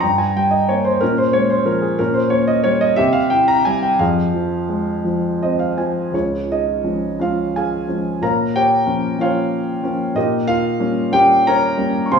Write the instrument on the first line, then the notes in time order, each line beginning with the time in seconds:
grand piano
0.00 G2 G5 A#5
0.18 G#5
0.36 G3 G5
0.51 D#5
0.69 A#3 C#5
0.85 C5
1.01 A#2 C#4 A#4
1.18 C5
1.33 G#3 C#5
1.50 C5
1.65 F3 A#4
1.82 G#4
1.99 A#2 C#4 A#4
2.14 C5
2.30 A#3 C#5
2.48 D#5
2.64 G3 C#5
2.81 D#5
2.96 C3 G4 E5
3.13 F5
3.30 E4 G5
3.48 A#5
3.65 G3 G#5
3.83 G5
3.99 F2 G#4 F5
4.34 F3
4.69 G#3
5.05 F3
5.42 C4 D#5
5.59 F5
5.78 F3 G#5
6.12 C#2 C#4 F4 G#4 C#5
6.50 D#4 G#4 D#5
6.84 F3 G#3 C#4
7.19 F3 G#3 C#4 F4 F5
7.56 G#4 F5 G#5
7.87 F3 G#3 C#4
8.21 A#2 A#4 C#5 F5 A#5
8.56 G4 C#5 G5
8.86 F3 A#3 C#4
9.18 F3 A#3 C#4 F4 C#5 F5
9.83 F3 A#3 C#4
10.15 A#2 D#4 G4 A#4 D#5
10.47 F4 A#4 F5
10.79 G3 A#3 C#4
11.11 G3 A#3 C#4 G4 G5
11.47 A#4 C#5 A#5
11.77 G3 A#3 C#4
12.06 C#6
12.12 C3 C5 F5 G#5 C6